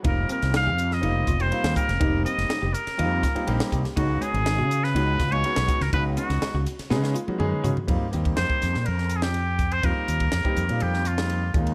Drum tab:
RD |x-xxx-x-x-xxx-xx|x-xxx-xxx-xxx-xx|x-xxx-x-x-xxx-xx|x-xxx-xx--------|
HH |--p---p---p---p-|--p---p---p---p-|--p---p---p---p-|--p---p---p---p-|
SD |---oo--o-----o-o|---oo--o--o--o-o|----o--o--o--o-o|---oo--ooo------|
T1 |----------------|----------------|----------------|-----------o----|
T2 |----------------|----------------|----------------|------------o---|
FT |----------------|----------------|----------------|--------------oo|
BD |o---------o---o-|o---------o---o-|o---------o---o-|o---------------|

RD |x-xxx-x-x-x-x-xx|x-xxx-xxx-xxx-xx|
HH |--p---p---p---p-|--p---p---p---p-|
SD |----o-oo-o-o----|----o----o-o----|
T1 |----------------|----------------|
T2 |----------------|----------------|
FT |----------------|----------------|
BD |o--o-o--------o-|o--o-o--------o-|